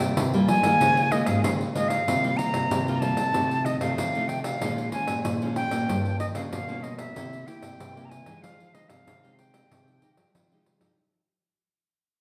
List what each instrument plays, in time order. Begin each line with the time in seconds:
Already playing: nylon-string guitar C3 G3 A#3 F4, flute G5
0.00 nylon-string guitar C3
0.17 nylon-string guitar G2 C3, pandeiro
0.33 nylon-string guitar G3 A#3 F4, pandeiro
0.48 nylon-string guitar F3, flute G#5, pandeiro
0.63 nylon-string guitar D#3 G#3 A#3 F4, pandeiro
0.80 nylon-string guitar C#3, pandeiro
0.97 pandeiro
1.12 nylon-string guitar G#3 A#3 F4, flute D#5, pandeiro
1.26 nylon-string guitar G#2, flute F5, pandeiro
1.44 nylon-string guitar G#2 C#3, flute F5, pandeiro
1.61 pandeiro
1.74 nylon-string guitar G#3 A#3 F4, flute D#5, pandeiro
1.88 flute F5, pandeiro
2.07 nylon-string guitar C3 G3 A#3 F4, pandeiro
2.24 nylon-string guitar G3 A#3 F4, pandeiro
2.37 flute A#5, pandeiro
2.54 nylon-string guitar C3, pandeiro
2.71 nylon-string guitar G2 C3, pandeiro
2.88 nylon-string guitar G3 A#3 F4, pandeiro
2.96 flute A#5
3.00 nylon-string guitar G3 A#3 F4, flute A5, pandeiro
3.17 nylon-string guitar C3, pandeiro
3.34 nylon-string guitar C3 F3 A3 D#4, pandeiro
3.51 pandeiro
3.65 flute D#5, pandeiro
3.80 nylon-string guitar C3 F3 A3 D#4, flute F5, pandeiro
3.97 nylon-string guitar C3, flute F5, pandeiro
4.15 nylon-string guitar F3 A3 D#4, pandeiro
4.28 flute G5, pandeiro
4.44 flute F5, pandeiro
4.61 nylon-string guitar A#2 F3 G#3 C#4, pandeiro
4.78 pandeiro
4.92 nylon-string guitar F3 G#3 C#4, flute G#5, pandeiro
5.08 nylon-string guitar A#2, pandeiro
5.25 nylon-string guitar F2 A#2, pandeiro
5.42 nylon-string guitar F3 G#3 C#4, pandeiro
5.56 flute G5, pandeiro
5.71 nylon-string guitar A#2 F3 A#3 C#4, pandeiro
5.89 nylon-string guitar G2, pandeiro
6.05 pandeiro
6.20 flute D#5, pandeiro
6.35 nylon-string guitar C#3 F3 A#3 C#4, flute F5, pandeiro
6.52 nylon-string guitar G2 B2, flute F5, pandeiro
6.68 nylon-string guitar F3 A#3 C#4, pandeiro
6.83 flute D#5, pandeiro
6.98 flute E5, pandeiro
7.15 nylon-string guitar C3 A#3 E4 G4, pandeiro
7.33 pandeiro
7.47 nylon-string guitar A#3 E4 G4, flute G5, pandeiro
7.62 nylon-string guitar C3, pandeiro
7.80 nylon-string guitar G2 C3, pandeiro
7.96 nylon-string guitar A#3 E4 G4, pandeiro
8.05 flute A#5
8.10 flute G#5, pandeiro
8.26 nylon-string guitar E3 G#3 D#4 G4, pandeiro
8.42 nylon-string guitar F3, flute F5, pandeiro
8.60 pandeiro
8.74 nylon-string guitar G#3 D#4 G4, flute D#5, pandeiro
8.89 nylon-string guitar C3, flute F5, pandeiro
9.07 nylon-string guitar C3, pandeiro
9.23 nylon-string guitar G#3 D#4 G4, pandeiro
9.38 flute G5, pandeiro
9.53 nylon-string guitar G#3 D#4 G4, pandeiro
9.71 nylon-string guitar C3 F3, pandeiro
9.88 pandeiro
10.02 nylon-string guitar G#3 D#4 G4, pandeiro
10.17 nylon-string guitar F3, pandeiro
10.35 nylon-string guitar C3 F3, pandeiro
10.52 nylon-string guitar G#3 D#4 G4, pandeiro
10.66 pandeiro
10.81 nylon-string guitar F3 G#3 D#4 G4, pandeiro